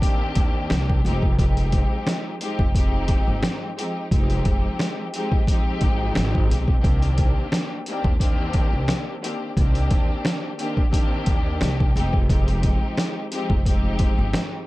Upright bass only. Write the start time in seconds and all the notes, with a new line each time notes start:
0.36 D#2
0.71 C2
1.05 F1
2.59 F1
3.28 G1
4.12 F1
4.46 F1
5.82 G#1
6.16 G#1
6.50 B1
6.84 C2
8.04 D#2
8.73 C2
9.57 C2
9.91 D#2
11.27 D#2
11.61 C2
11.96 F1
13.50 F1
14.19 G1